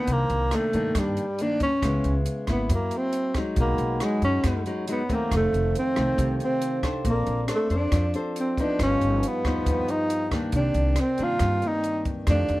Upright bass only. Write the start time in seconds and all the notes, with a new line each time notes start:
0.08 C2
0.30 C2
0.74 G2
0.95 G2
1.83 C#2
2.04 C#2
2.47 G#1
2.69 F#2
3.57 B1
3.78 B1
4.22 F#2
4.44 F#2
5.31 F1
5.53 F1
5.97 C2
6.18 C2
7.05 A#1
7.27 A#1
7.70 F2
7.92 F2
8.79 G1
9.01 G1
9.44 D#2
9.66 D#2
10.53 C2
10.74 C2
11.19 G2
11.40 G2
12.27 F2
12.49 F2